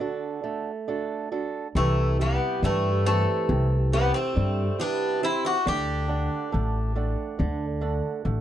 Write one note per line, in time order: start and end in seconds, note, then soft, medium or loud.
0.00 0.42 D3 medium
0.00 0.70 D4 medium
0.00 0.71 F#4 soft
0.00 0.71 A4 medium
0.44 1.29 A3 medium
0.88 1.30 D4 medium
0.88 1.30 F#4 soft
0.88 1.31 A4 medium
1.32 1.67 D4 medium
1.32 1.67 F#4 soft
1.32 1.67 A4 medium
1.75 2.36 C2 loud
1.75 2.60 C3 medium
1.75 2.16 E3 medium
1.75 2.17 A3 medium
2.19 2.60 G3 medium
2.19 2.61 B3 medium
2.19 2.89 E4 soft
2.19 2.89 G4 medium
2.63 3.23 G2 loud
2.63 3.04 E3 medium
2.63 3.47 G3 medium
2.63 3.04 A3 medium
3.05 3.89 E3 medium
3.05 3.96 A3 medium
3.05 3.75 C4 medium
3.05 3.75 E4 soft
3.05 3.75 G4 medium
3.49 4.10 C2 loud
3.49 4.34 C3 medium
3.92 4.14 G3 medium
3.92 4.13 B3 medium
3.92 4.62 C4 medium
3.92 4.62 E4 soft
3.92 4.63 G4 medium
4.14 4.76 A3 medium
4.14 4.81 C4 medium
4.36 4.67 G2 loud
4.36 5.20 G3 medium
4.78 5.48 C3 medium
4.78 5.20 B3 medium
4.78 5.21 D4 medium
4.78 5.22 E4 soft
4.78 5.22 G4 medium
5.22 5.57 C4 medium
5.22 5.43 C4 medium
5.22 5.57 E4 soft
5.22 5.44 E4 medium
5.22 5.58 G4 medium
5.45 5.65 D4 medium
5.45 5.68 F#4 medium
5.66 6.27 D2 loud
5.66 6.50 D3 medium
5.66 8.41 D4 medium
5.66 8.41 G4 loud
6.08 6.51 A3 soft
6.08 6.78 D4 soft
6.08 6.78 F#5 medium
6.52 7.14 A1 medium
6.52 6.94 A3 medium
6.95 7.64 A3 medium
6.95 7.65 D4 soft
6.95 7.65 F#5 medium
7.39 8.00 D2 loud
7.39 8.22 D3 medium
7.81 8.24 A3 soft
7.81 8.41 D4 soft
7.81 8.41 F#5 soft
8.25 8.41 A1 loud
8.25 8.41 A3 medium